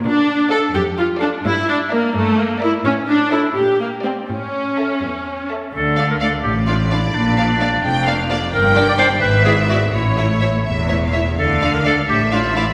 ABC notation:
X:1
M:6/8
L:1/16
Q:3/8=85
K:Dm
V:1 name="Violin section"
z4 f2 z4 f2 | z4 e2 z4 e2 | z4 e2 z4 g2 | z4 a2 z4 a2 |
z6 d6- | d6 g2 f2 d2 | g6 e6 | ^c6 e3 f e2 |
f6 e6 |]
V:2 name="Violin section"
z4 [Ad]2 z4 [Ad]2 | z4 [Bd]2 z4 [Bd]2 | z4 [A^c]2 z4 d2 | z4 [Ae]2 z4 [Ae]2 |
z2 [df]2 [df]2 z2 [df]2 [df]2 | z2 [df]2 [df]2 z2 [df]2 [df]2 | z2 [dg]2 [dg]2 z2 [de]2 [de]2 | z2 [^ce]2 [ce]2 z2 [ce]2 [ce]2 |
z2 [df]2 [df]2 z2 [df]2 [df]2 |]
V:3 name="Clarinet"
z12 | z12 | z12 | z12 |
A3 B A2 G2 F2 E2 | D8- D2 z2 | B3 d c2 =B2 ^G2 ^F2 | E6 z6 |
A3 B A2 G2 F2 E2 |]
V:4 name="Viola section"
D4 A2 G2 F2 D2 | E2 D2 B,2 A,2 B,2 E2 | ^C2 D2 E2 G2 B,2 =C2 | ^C8- C2 z2 |
z2 [A,D]2 [A,D]2 z2 [A,D]2 [A,D]2 | z2 [B,D]2 [B,D]2 z2 [B,D]2 [B,D]2 | z2 D2 D2 z2 [=B,E]2 [B,E]2 | z2 [A,E]2 [A,E]2 z2 [A,E]2 [A,E]2 |
z2 [A,D]2 [A,D]2 z2 [A,D]2 [A,D]2 |]
V:5 name="Cello section" clef=bass
B,,6 F,,6 | G,,6 G,,6 | A,,6 B,,6 | A,,6 E,,6 |
D,6 A,,6 | B,,6 F,,6 | G,,6 ^G,,6 | A,,6 E,,6 |
D,6 A,,6 |]
V:6 name="Double bass section" clef=bass
z12 | z12 | z12 | z12 |
D,,6 A,,,6 | B,,,6 F,,,6 | G,,,6 ^G,,,6 | A,,,6 E,,,6 |
D,,6 A,,,6 |]